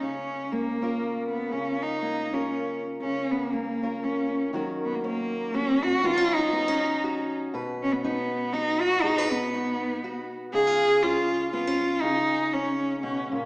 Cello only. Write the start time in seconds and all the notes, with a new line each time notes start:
0.02 C#4
0.52 A#3
1.30 B3
1.52 C#4
1.83 D#4
2.33 C#4
3.02 C#4
3.31 B3
3.52 A#3
4.04 C#4
4.85 B3
4.95 A#3
5.05 A#3
5.55 C#4
5.84 F#4
6.05 F4
6.34 D#4
7.83 C#4
7.93 B3
8.02 B3
8.53 D#4
8.81 F#4
9.02 D#4
9.31 B3
10.54 G#4
11.03 F4
11.53 F4
12.02 D#4
12.53 C#4
13.02 C#4